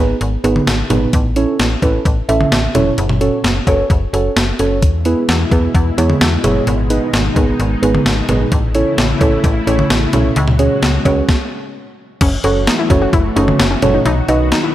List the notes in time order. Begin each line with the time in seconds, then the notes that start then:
Already playing: G#1 B3 D#4 G#4 B4
0.21 G#1, closed hi-hat
0.44 G#1 B3 D#4 G#4 B4, closed hi-hat
0.56 mid tom
0.67 G#1, snare, closed hi-hat
0.90 G#1 B3 D#4 G#4 B4, closed hi-hat, mid tom
1.13 A1, kick, closed hi-hat
1.36 C#4 E4 A4 C#5, closed hi-hat
1.59 A1, snare, closed hi-hat
1.82 A1 C#4 E4 A4 B4, kick, closed hi-hat
2.05 A1, kick, closed hi-hat
2.29 A1 C#4 E4 A4 E5, closed hi-hat
2.41 mid tom
2.52 A1, snare, closed hi-hat
2.75 E1 C#4 E4 A4 C#5, closed hi-hat, mid tom
2.98 F#1, closed hi-hat
3.09 mid tom
3.21 C#4 F#4 A4 C#5, closed hi-hat
3.44 F#1, snare, closed hi-hat
3.67 F#1 C#4 F#4 A4 C#5, kick, closed hi-hat, cowbell
3.90 F#1, kick, closed hi-hat
4.13 F#1 C#4 F#4 A4 C#5, closed hi-hat
4.36 F#1, snare, closed hi-hat
4.59 F#1 C#4 F#4 A4 C#5, closed hi-hat
4.82 E2 B2 G#3 E4, kick, closed hi-hat
5.05 B3 E4 G#4 B4, closed hi-hat
5.29 E2, snare, closed hi-hat
5.51 E2 B3 E4 G#4 B4, kick, closed hi-hat
5.75 E2, kick, closed hi-hat
5.98 E2 B3 E4 G#4 C#5, closed hi-hat
6.10 mid tom
6.21 E2, snare, closed hi-hat
6.44 F#1 B3 E4 G#4 C#5, closed hi-hat, mid tom
6.67 G#1 D#4, closed hi-hat
6.90 B3 D#4 G#4 B4, closed hi-hat
7.13 G#1, snare, closed hi-hat
7.36 G#1 B3 D#4 G#4 B4, kick, closed hi-hat
7.59 G#1, closed hi-hat
7.82 G#1 B3 D#4 G#4 B4, closed hi-hat
7.95 mid tom
8.06 G#1, snare, closed hi-hat
8.29 G#1 B3 D#4 G#4 B4, closed hi-hat, mid tom
8.52 A1 C#3 A3 E4, kick, closed hi-hat
8.75 C#4 E4 A4 C#5, closed hi-hat
8.98 A1, snare, closed hi-hat
9.21 A1 C#4 E4 A4 C#5, kick, closed hi-hat
9.44 A1, kick, closed hi-hat
9.67 A1 C#4 E4 A4 C#5, closed hi-hat
9.79 mid tom
9.90 A1, snare, closed hi-hat
10.13 B1 C#4 E4 A4 C#5, closed hi-hat, mid tom
10.36 C#2 G#3 F#4, closed hi-hat
10.48 mid tom
10.59 C#4 F#4 G#4 C#5, closed hi-hat
10.82 C#2, snare, closed hi-hat
11.05 C#2 C#4 F#4 G#4 C#5, kick, closed hi-hat, cowbell
11.29 kick, snare
12.21 F#1 E3 A3 C#4 F#4, kick, closed hi-hat, crash
12.44 F#1 C#4 F#4 A4 C#5, closed hi-hat
12.67 D#4, snare, closed hi-hat
12.79 E4
12.90 F#1 C#4 F#4 A4 C#5, kick, closed hi-hat
13.02 F#4
13.13 F#1 E4, kick, closed hi-hat
13.36 F#1 C#4 D#4 F#4 A4 C#5, closed hi-hat
13.48 mid tom
13.59 F#1 C#4, snare, closed hi-hat
13.71 C#4
13.82 F#1 C#4 F#4 A4 C#5, closed hi-hat, mid tom
13.94 D#4
14.05 B1 D#3 B3 D#4, closed hi-hat
14.28 B1 D#4 F#4 B4 D#5, closed hi-hat
14.52 D#4, snare, closed hi-hat
14.63 E4